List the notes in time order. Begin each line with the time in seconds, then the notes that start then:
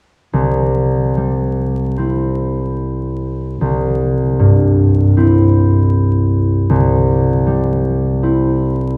0.33 C2
1.17 G3
1.97 C4 E4
3.61 C2
4.39 G2
5.17 C4 E4
6.70 C2
7.47 G3
8.23 C4 E4